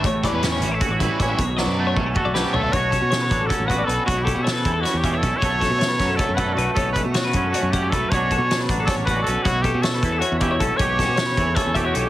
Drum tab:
HH |xxxxxxx|x------|xxxxxxx|xxxxxxx|
SD |--o----|-o---o-|--o----|--o-o--|
T2 |-------|----o--|-------|-------|
FT |-------|------o|-------|-------|
BD |oo--ooo|o--oo--|oo-ooo-|oo-o-oo|

HH |xxxxxxx|xxxxxxx|xxxxxxx|xxxxxxx|
SD |-ooo---|--o----|--o-o--|--o----|
T2 |-------|-------|-------|-------|
FT |-------|-------|-------|-------|
BD |oo-ooo-|oo-o-oo|oo-ooo-|oo-o-oo|

HH |xxxxxxx|
SD |-oo----|
T2 |-------|
FT |-------|
BD |oo-ooo-|